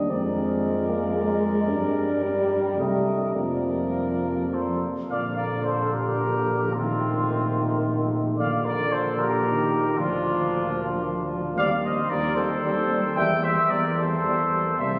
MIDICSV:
0, 0, Header, 1, 6, 480
1, 0, Start_track
1, 0, Key_signature, -2, "major"
1, 0, Tempo, 536193
1, 87, Time_signature, 3, 2, 24, 8
1, 2488, Tempo, 581395
1, 4408, Tempo, 546946
1, 7288, Tempo, 530973
1, 11608, Tempo, 542005
1, 13226, End_track
2, 0, Start_track
2, 0, Title_t, "Trumpet"
2, 0, Program_c, 0, 56
2, 0, Note_on_c, 0, 75, 47
2, 87, Note_on_c, 0, 74, 47
2, 100, Note_off_c, 0, 75, 0
2, 2498, Note_on_c, 0, 75, 47
2, 2510, Note_off_c, 0, 74, 0
2, 2958, Note_off_c, 0, 75, 0
2, 2963, Note_on_c, 0, 74, 44
2, 3940, Note_on_c, 0, 72, 37
2, 3953, Note_off_c, 0, 74, 0
2, 4177, Note_off_c, 0, 72, 0
2, 4404, Note_on_c, 0, 77, 60
2, 4630, Note_off_c, 0, 77, 0
2, 4640, Note_on_c, 0, 74, 56
2, 4870, Note_off_c, 0, 74, 0
2, 4875, Note_on_c, 0, 72, 53
2, 5116, Note_off_c, 0, 72, 0
2, 5122, Note_on_c, 0, 70, 56
2, 5842, Note_on_c, 0, 65, 62
2, 5855, Note_off_c, 0, 70, 0
2, 7046, Note_off_c, 0, 65, 0
2, 7290, Note_on_c, 0, 77, 72
2, 7400, Note_off_c, 0, 77, 0
2, 7526, Note_on_c, 0, 74, 75
2, 7774, Note_on_c, 0, 72, 69
2, 7787, Note_off_c, 0, 74, 0
2, 8010, Note_off_c, 0, 72, 0
2, 8015, Note_on_c, 0, 70, 74
2, 8728, Note_on_c, 0, 65, 79
2, 8741, Note_off_c, 0, 70, 0
2, 9923, Note_off_c, 0, 65, 0
2, 10169, Note_on_c, 0, 77, 91
2, 10277, Note_off_c, 0, 77, 0
2, 10416, Note_on_c, 0, 75, 72
2, 10644, Note_on_c, 0, 74, 80
2, 10657, Note_off_c, 0, 75, 0
2, 10870, Note_off_c, 0, 74, 0
2, 10875, Note_on_c, 0, 72, 82
2, 11588, Note_off_c, 0, 72, 0
2, 11604, Note_on_c, 0, 79, 96
2, 11838, Note_off_c, 0, 79, 0
2, 11846, Note_on_c, 0, 76, 87
2, 12084, Note_on_c, 0, 74, 80
2, 12097, Note_off_c, 0, 76, 0
2, 12323, Note_off_c, 0, 74, 0
2, 12327, Note_on_c, 0, 72, 78
2, 13036, Note_off_c, 0, 72, 0
2, 13043, Note_on_c, 0, 76, 86
2, 13226, Note_off_c, 0, 76, 0
2, 13226, End_track
3, 0, Start_track
3, 0, Title_t, "Flugelhorn"
3, 0, Program_c, 1, 56
3, 88, Note_on_c, 1, 70, 51
3, 2928, Note_off_c, 1, 70, 0
3, 2963, Note_on_c, 1, 70, 44
3, 3935, Note_on_c, 1, 69, 36
3, 3947, Note_off_c, 1, 70, 0
3, 4174, Note_off_c, 1, 69, 0
3, 4408, Note_on_c, 1, 74, 52
3, 4517, Note_off_c, 1, 74, 0
3, 4648, Note_on_c, 1, 70, 46
3, 4881, Note_off_c, 1, 70, 0
3, 4886, Note_on_c, 1, 69, 49
3, 5122, Note_off_c, 1, 69, 0
3, 5127, Note_on_c, 1, 67, 55
3, 5832, Note_off_c, 1, 67, 0
3, 5841, Note_on_c, 1, 60, 55
3, 7021, Note_off_c, 1, 60, 0
3, 7280, Note_on_c, 1, 74, 64
3, 7528, Note_on_c, 1, 70, 57
3, 7542, Note_off_c, 1, 74, 0
3, 7769, Note_off_c, 1, 70, 0
3, 7775, Note_on_c, 1, 69, 59
3, 8006, Note_off_c, 1, 69, 0
3, 8011, Note_on_c, 1, 67, 68
3, 8734, Note_on_c, 1, 62, 68
3, 8747, Note_off_c, 1, 67, 0
3, 9926, Note_off_c, 1, 62, 0
3, 10164, Note_on_c, 1, 74, 78
3, 10273, Note_off_c, 1, 74, 0
3, 10411, Note_on_c, 1, 72, 59
3, 10651, Note_on_c, 1, 70, 70
3, 10664, Note_off_c, 1, 72, 0
3, 10884, Note_on_c, 1, 69, 75
3, 10898, Note_off_c, 1, 70, 0
3, 11607, Note_off_c, 1, 69, 0
3, 11611, Note_on_c, 1, 76, 74
3, 11847, Note_on_c, 1, 72, 65
3, 11860, Note_off_c, 1, 76, 0
3, 12079, Note_off_c, 1, 72, 0
3, 12084, Note_on_c, 1, 70, 70
3, 12336, Note_on_c, 1, 69, 76
3, 12349, Note_off_c, 1, 70, 0
3, 13046, Note_off_c, 1, 69, 0
3, 13051, Note_on_c, 1, 72, 67
3, 13159, Note_off_c, 1, 72, 0
3, 13226, End_track
4, 0, Start_track
4, 0, Title_t, "French horn"
4, 0, Program_c, 2, 60
4, 0, Note_on_c, 2, 62, 60
4, 82, Note_on_c, 2, 60, 55
4, 96, Note_off_c, 2, 62, 0
4, 801, Note_on_c, 2, 58, 61
4, 814, Note_off_c, 2, 60, 0
4, 1034, Note_off_c, 2, 58, 0
4, 1039, Note_on_c, 2, 56, 72
4, 1516, Note_on_c, 2, 62, 80
4, 1530, Note_off_c, 2, 56, 0
4, 1995, Note_on_c, 2, 55, 69
4, 2008, Note_off_c, 2, 62, 0
4, 2485, Note_on_c, 2, 57, 67
4, 2497, Note_off_c, 2, 55, 0
4, 2957, Note_off_c, 2, 57, 0
4, 2962, Note_on_c, 2, 58, 57
4, 3910, Note_off_c, 2, 58, 0
4, 4408, Note_on_c, 2, 58, 43
4, 5813, Note_off_c, 2, 58, 0
4, 5848, Note_on_c, 2, 57, 44
4, 7258, Note_off_c, 2, 57, 0
4, 7285, Note_on_c, 2, 58, 54
4, 8706, Note_off_c, 2, 58, 0
4, 8736, Note_on_c, 2, 58, 56
4, 10139, Note_off_c, 2, 58, 0
4, 10161, Note_on_c, 2, 60, 61
4, 10271, Note_off_c, 2, 60, 0
4, 10408, Note_on_c, 2, 60, 52
4, 10516, Note_off_c, 2, 60, 0
4, 10643, Note_on_c, 2, 60, 53
4, 10751, Note_off_c, 2, 60, 0
4, 10881, Note_on_c, 2, 60, 53
4, 10989, Note_off_c, 2, 60, 0
4, 11123, Note_on_c, 2, 60, 57
4, 11232, Note_off_c, 2, 60, 0
4, 11360, Note_on_c, 2, 60, 56
4, 11470, Note_off_c, 2, 60, 0
4, 11607, Note_on_c, 2, 58, 58
4, 11714, Note_off_c, 2, 58, 0
4, 11844, Note_on_c, 2, 58, 47
4, 11951, Note_off_c, 2, 58, 0
4, 12081, Note_on_c, 2, 58, 54
4, 12190, Note_off_c, 2, 58, 0
4, 12323, Note_on_c, 2, 58, 53
4, 12432, Note_off_c, 2, 58, 0
4, 12566, Note_on_c, 2, 58, 52
4, 12674, Note_off_c, 2, 58, 0
4, 12812, Note_on_c, 2, 58, 50
4, 12920, Note_off_c, 2, 58, 0
4, 13054, Note_on_c, 2, 58, 56
4, 13161, Note_off_c, 2, 58, 0
4, 13226, End_track
5, 0, Start_track
5, 0, Title_t, "Trombone"
5, 0, Program_c, 3, 57
5, 90, Note_on_c, 3, 56, 47
5, 1522, Note_on_c, 3, 55, 61
5, 1536, Note_off_c, 3, 56, 0
5, 2955, Note_off_c, 3, 55, 0
5, 2960, Note_on_c, 3, 53, 45
5, 4146, Note_off_c, 3, 53, 0
5, 4409, Note_on_c, 3, 50, 43
5, 5813, Note_off_c, 3, 50, 0
5, 5849, Note_on_c, 3, 51, 49
5, 7259, Note_off_c, 3, 51, 0
5, 7287, Note_on_c, 3, 50, 53
5, 8241, Note_off_c, 3, 50, 0
5, 8257, Note_on_c, 3, 51, 53
5, 8724, Note_off_c, 3, 51, 0
5, 8735, Note_on_c, 3, 53, 58
5, 10139, Note_off_c, 3, 53, 0
5, 10172, Note_on_c, 3, 55, 64
5, 10279, Note_off_c, 3, 55, 0
5, 10413, Note_on_c, 3, 55, 46
5, 10519, Note_off_c, 3, 55, 0
5, 10651, Note_on_c, 3, 55, 52
5, 10757, Note_off_c, 3, 55, 0
5, 10889, Note_on_c, 3, 55, 54
5, 10996, Note_off_c, 3, 55, 0
5, 11131, Note_on_c, 3, 55, 55
5, 11238, Note_off_c, 3, 55, 0
5, 11374, Note_on_c, 3, 55, 51
5, 11481, Note_off_c, 3, 55, 0
5, 11614, Note_on_c, 3, 55, 62
5, 11719, Note_off_c, 3, 55, 0
5, 11851, Note_on_c, 3, 55, 46
5, 11956, Note_off_c, 3, 55, 0
5, 12087, Note_on_c, 3, 55, 53
5, 12194, Note_off_c, 3, 55, 0
5, 12330, Note_on_c, 3, 55, 54
5, 12437, Note_off_c, 3, 55, 0
5, 12574, Note_on_c, 3, 55, 53
5, 12681, Note_off_c, 3, 55, 0
5, 12814, Note_on_c, 3, 55, 51
5, 12920, Note_off_c, 3, 55, 0
5, 13053, Note_on_c, 3, 55, 57
5, 13160, Note_off_c, 3, 55, 0
5, 13226, End_track
6, 0, Start_track
6, 0, Title_t, "Tuba"
6, 0, Program_c, 4, 58
6, 85, Note_on_c, 4, 41, 46
6, 1521, Note_on_c, 4, 43, 52
6, 1534, Note_off_c, 4, 41, 0
6, 2486, Note_on_c, 4, 36, 52
6, 2498, Note_off_c, 4, 43, 0
6, 2956, Note_off_c, 4, 36, 0
6, 2961, Note_on_c, 4, 41, 46
6, 4146, Note_off_c, 4, 41, 0
6, 4404, Note_on_c, 4, 34, 40
6, 7250, Note_off_c, 4, 34, 0
6, 7283, Note_on_c, 4, 34, 51
6, 8705, Note_off_c, 4, 34, 0
6, 8732, Note_on_c, 4, 38, 55
6, 10137, Note_off_c, 4, 38, 0
6, 10174, Note_on_c, 4, 39, 63
6, 10593, Note_off_c, 4, 39, 0
6, 10647, Note_on_c, 4, 39, 61
6, 11069, Note_off_c, 4, 39, 0
6, 11127, Note_on_c, 4, 39, 64
6, 11479, Note_off_c, 4, 39, 0
6, 11606, Note_on_c, 4, 40, 65
6, 12025, Note_off_c, 4, 40, 0
6, 12086, Note_on_c, 4, 40, 60
6, 12510, Note_off_c, 4, 40, 0
6, 12566, Note_on_c, 4, 40, 60
6, 12992, Note_off_c, 4, 40, 0
6, 13048, Note_on_c, 4, 36, 60
6, 13226, Note_off_c, 4, 36, 0
6, 13226, End_track
0, 0, End_of_file